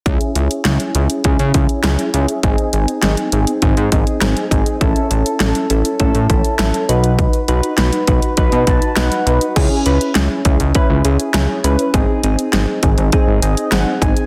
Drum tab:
CC |----------------|----------------|----------------|----------------|
HH |xxxxxxxxxxxxxxxx|xxxxxxxxxxxxxxxx|xxxxxxxxxxxxxxxx|xxxxxxxxxxxxxxxx|
SD |----o-------o---|----o-------o---|----o-------o---|----o-------o---|
BD |o-------o-o-----|o-------o-o---o-|o-------o-o-----|o-----o-o-o-----|

CC |x---------------|----------------|
HH |x-xxx-xxx-xxx-xx|x-xxx-xxx-xxx-xx|
SD |----o-------o---|----o-------o---|
BD |o-----o-o-------|o-----o-o-----o-|